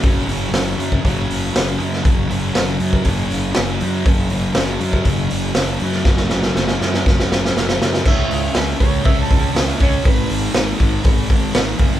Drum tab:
CC |----------------|----------------|----------------|----------------|
HH |o-o-o-o-o-o-o-o-|o-o-o-o-o-o-o-o-|o-o-o-o-o-o-o-o-|----------------|
SD |----o-------o--o|----o-------o---|----o-------o--o|oooooooooooooooo|
BD |o------oo-------|o------oo-------|o------oo-------|o-------o-------|

CC |x---------------|----------------|
HH |--o-o-o-o-o-o-o-|o-o-o-o-o-o-o-o-|
SD |----o-------o---|----o-------o---|
BD |o-----o-o-o---o-|o-----o-o-o---o-|